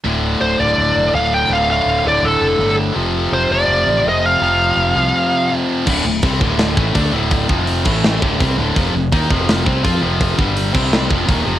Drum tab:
CC |--------|--------|--------|--------|
HH |--------|--------|--------|--------|
SD |--------|--------|--------|--------|
BD |--------|--------|--------|--------|

CC |x-------|---x----|--------|---x----|
HH |--o-o-o-|o-o---o-|o-o-o-o-|o-o---o-|
SD |----o---|----o---|----o---|----o---|
BD |o-oo-oo-|oo-o-oo-|o-oo-oo-|oo-o-oo-|